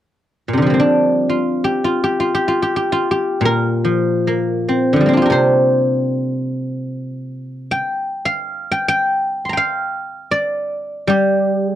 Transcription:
guzheng
0.48 A#2
0.53 C3
0.57 D3
0.62 F3
0.66 G3 A#3
0.74 C4
0.80 D4
1.29 F4
1.64 G4
1.84 F4
2.04 G4
2.20 F4
2.35 G4
2.48 F4
2.62 G4
2.76 G4
2.92 F4
3.11 G4
3.41 A#2
3.45 A#4
3.85 F3
4.27 A#3
4.69 C4
4.93 D3 F3
5.01 G3
5.06 A#3 C4
5.13 D4 F4
5.22 G4 A#4
5.30 C3 C5
7.71 G5
8.25 F5
8.72 G5
8.88 G5
9.45 C6
9.49 G5 A#5
9.57 F5
10.31 D5
11.07 G3 G4
11.67 G#4

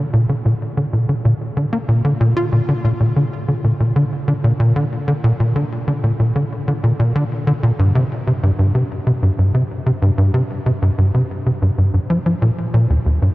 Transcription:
analog synth bass
0.13 A#2
0.29 D3
0.45 A#2
0.77 D3
0.93 A#2
1.09 D3
1.25 A#2
1.57 D3
1.73 A#3
1.89 A#2
2.05 D3
2.21 A#2
2.37 F4
2.52 A#2
2.69 D3
2.84 A#2
3.00 A#2
3.16 D3
3.48 D3
3.64 A#2
3.80 A#2
3.96 D3
4.28 D3
4.44 A#2
4.60 A#2
4.76 D3
5.08 D3
5.24 A#2
5.40 A#2
5.55 D3
5.88 D3
6.04 A#2
6.20 A#2
6.35 D3
6.67 D3
6.83 A#2
6.99 A#2
7.15 D3
7.47 D3
7.63 A#2
7.79 G2
7.95 C3
8.27 C3
8.43 G2
8.59 G2
8.75 C3
9.07 C3
9.23 G2
9.39 G2
9.54 C3
9.86 C3
10.02 G2
10.18 G2
10.34 C3
10.66 C3
10.82 G2
10.98 G2
11.14 C3
11.46 C3
11.62 G2
11.78 G2
11.94 G2
12.10 F3
12.26 F3
12.42 A#2
12.74 A#2
12.90 D#2
13.06 D#2
13.22 G2

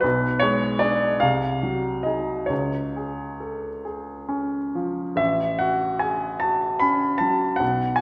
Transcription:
grand piano
0.01 B1 B4
0.40 G#3 C#5
0.79 D4 G#4 D5
1.20 C2 F5
1.63 F#3
2.03 D#4 G#4 D#5
2.46 C#2 C#5
2.96 G#4
3.40 A4
3.85 G#4
4.29 C#4
4.75 F3
5.16 A1 E5
5.59 F#4 F#5
5.99 G#4 G#5
6.40 F#4 A5
6.80 C#4 B5
7.18 F#3 A5
7.56 B1 F#5
7.96 G#5

